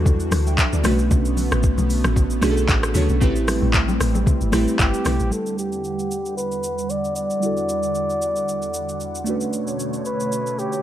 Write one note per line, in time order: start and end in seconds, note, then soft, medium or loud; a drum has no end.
0.00 0.30 E2 loud
0.00 0.81 E3 medium
0.00 0.87 F#3 medium
0.00 0.81 G3 medium
0.00 0.87 G3 medium
0.00 0.81 D4 medium
0.00 0.85 D4 medium
0.00 0.87 E4 medium
0.00 0.81 F#4 medium
0.00 0.86 F#4 medium
0.00 0.87 A4 loud
0.00 0.74 B4 loud
0.00 0.73 D5 medium
0.05 kick loud
0.05 low conga medium
0.05 shaker medium
0.20 shaker medium
0.31 0.57 D2 loud
0.31 cross-stick medium
0.31 open hi-hat medium
0.31 high conga medium
0.31 shaker loud
0.47 0.57 E5 medium
0.47 0.58 G5 medium
0.47 shaker medium
0.58 0.72 E5 medium
0.58 kick medium
0.58 clap loud
0.58 shaker medium
0.73 0.84 D2 medium
0.73 0.85 B4 medium
0.73 0.98 D5 medium
0.73 shaker medium
0.84 1.10 B1 loud
0.84 3.19 D3 medium
0.84 1.69 A3 loud
0.84 5.28 A3 medium
0.84 3.19 B3 loud
0.84 1.69 C#4 medium
0.84 1.70 D4 medium
0.84 1.70 F#4 medium
0.84 1.70 B4 loud
0.84 cross-stick loud
0.84 open hi-hat medium
0.84 high conga medium
0.84 low conga medium
0.84 shaker loud
0.99 shaker medium
1.11 1.50 B1 loud
1.11 kick loud
1.11 low conga medium
1.11 shaker medium
1.25 shaker medium
1.37 open hi-hat medium
1.37 high conga medium
1.37 shaker medium
1.51 1.77 A1 medium
1.51 cross-stick loud
1.51 shaker soft
1.63 kick medium
1.63 shaker medium
1.78 2.04 B1 medium
1.78 high conga medium
1.78 shaker medium
1.90 open hi-hat medium
1.90 shaker medium
2.04 2.41 A1 medium
2.04 cross-stick medium
2.04 high conga medium
2.04 shaker medium
2.16 kick loud
2.16 low conga medium
2.16 shaker medium
2.30 shaker medium
2.41 2.68 B1 medium
2.41 2.85 A3 medium
2.41 2.86 C#4 medium
2.41 2.86 D4 medium
2.41 2.86 F#4 medium
2.41 2.50 G#4 medium
2.41 cross-stick medium
2.41 open hi-hat medium
2.41 high conga medium
2.41 shaker loud
2.51 2.90 A4 loud
2.57 shaker medium
2.69 2.94 A1 medium
2.69 kick loud
2.69 clap loud
2.69 shaker medium
2.83 cross-stick loud
2.83 shaker medium
2.94 3.09 D2 loud
2.94 3.16 A3 medium
2.94 3.17 C#4 medium
2.94 3.17 D4 medium
2.94 3.17 F#4 medium
2.94 3.18 C#5 medium
2.94 open hi-hat medium
2.94 high conga medium
2.94 low conga medium
2.94 shaker loud
3.09 3.23 B1 medium
3.09 shaker medium
3.20 3.61 A1 loud
3.20 5.30 G3 medium
3.20 4.06 A3 medium
3.20 4.06 C4 medium
3.20 5.30 C4 medium
3.20 4.06 E4 medium
3.20 4.07 G4 medium
3.20 4.07 B4 loud
3.20 kick loud
3.20 low conga medium
3.20 shaker medium
3.36 shaker medium
3.48 cross-stick loud
3.48 open hi-hat medium
3.48 high conga medium
3.48 shaker medium
3.62 3.99 A1 loud
3.74 kick medium
3.74 clap loud
3.74 shaker medium
3.88 high conga medium
3.88 shaker medium
4.00 4.26 A1 loud
4.00 cross-stick medium
4.00 open hi-hat medium
4.00 shaker loud
4.15 high conga medium
4.15 shaker medium
4.26 kick loud
4.26 low conga medium
4.26 shaker medium
4.41 4.53 G1 medium
4.41 shaker medium
4.52 4.67 A1 loud
4.52 4.96 A3 medium
4.52 4.96 C4 medium
4.52 4.96 E4 medium
4.52 4.97 G4 medium
4.52 4.97 B4 loud
4.52 cross-stick medium
4.52 open hi-hat medium
4.52 high conga medium
4.52 shaker loud
4.68 shaker medium
4.79 4.93 G1 medium
4.79 5.34 G4 medium
4.79 kick loud
4.79 clap medium
4.79 shaker medium
4.94 shaker medium
5.05 5.20 B1 loud
5.05 5.27 A3 medium
5.05 5.27 C4 medium
5.05 5.27 E4 medium
5.05 5.28 G4 medium
5.05 5.28 B4 medium
5.05 cross-stick loud
5.05 open hi-hat medium
5.05 high conga medium
5.05 low conga medium
5.05 shaker loud
5.20 5.32 A1 medium
5.20 shaker medium
5.30 9.23 E2 medium
5.30 9.23 D3 medium
5.30 7.37 G3 medium
5.30 9.23 G3 medium
5.30 7.38 D4 medium
5.30 7.39 E4 medium
5.30 5.58 A4 medium
5.30 9.23 F#5 medium
5.30 shaker medium
5.35 7.40 B4 medium
5.46 shaker medium
5.58 6.33 G4 medium
5.58 shaker medium
5.72 shaker soft
5.84 shaker medium
5.99 shaker medium
6.11 shaker medium
6.26 shaker medium
6.38 6.92 B4 loud
6.38 shaker medium
6.52 shaker soft
6.63 shaker loud
6.78 shaker medium
6.90 7.16 D5 loud
6.90 shaker medium
7.05 shaker medium
7.16 9.23 D5 loud
7.16 shaker medium
7.30 shaker medium
7.40 9.22 G3 medium
7.40 9.23 D4 medium
7.40 9.23 E4 medium
7.40 shaker medium
7.44 9.24 F#4 medium
7.44 9.25 A4 medium
7.57 shaker medium
7.69 shaker medium
7.83 shaker soft
7.95 shaker medium
8.10 shaker medium
8.22 shaker medium
8.36 shaker soft
8.49 shaker medium
8.62 shaker soft
8.74 shaker medium
8.89 shaker medium
9.00 shaker medium
9.15 shaker medium
9.24 10.82 B2 medium
9.24 10.82 D3 medium
9.24 10.82 A3 medium
9.24 10.82 C#4 medium
9.24 10.82 D4 medium
9.24 10.82 C#5 medium
9.24 shaker medium
9.28 10.82 F#4 medium
9.28 10.82 B4 medium
9.41 shaker medium
9.53 shaker medium
9.67 shaker medium
9.80 shaker medium
9.93 shaker soft
10.05 10.60 B4 medium
10.05 shaker medium
10.20 shaker medium
10.32 shaker medium
10.46 shaker soft
10.59 10.82 G4 medium
10.59 shaker medium
10.73 shaker soft